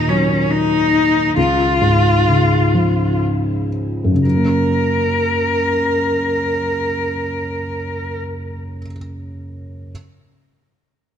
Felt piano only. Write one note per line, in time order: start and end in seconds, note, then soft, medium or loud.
0.00 1.33 D#2 medium
0.00 0.89 A#2 soft
0.00 1.33 D#3 soft
0.08 1.33 F#3 soft
1.37 4.20 C#2 soft
1.81 3.69 G#2 soft
2.27 4.13 C#3 soft
2.74 4.20 F3 soft
4.04 8.76 F#2 soft
4.14 8.81 C#3 soft
4.25 8.86 F#3 soft
4.35 8.91 A#3 soft
4.45 8.96 C#4 soft